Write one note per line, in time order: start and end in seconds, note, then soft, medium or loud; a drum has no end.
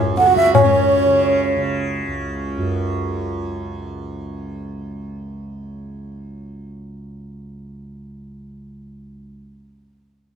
0.00 2.07 C#2 medium
0.00 0.55 F#2 medium
0.00 0.18 C#3 medium
0.17 1.06 C#3 medium
0.17 0.28 A4 medium
0.17 0.35 F#5 loud
0.17 tabla te medium
0.27 0.63 F#4 medium
0.27 tabla te medium
0.36 0.54 E5 loud
0.36 tabla ke medium
0.45 tabla te medium
0.54 2.58 F#2 medium
0.54 1.63 C#5 medium
0.54 tabla na loud
0.54 tabla ge loud
0.64 1.72 C#4 medium
1.06 1.56 C#3 medium
1.56 8.71 C#3 medium
2.07 9.22 C#2 medium
2.58 9.73 F#2 medium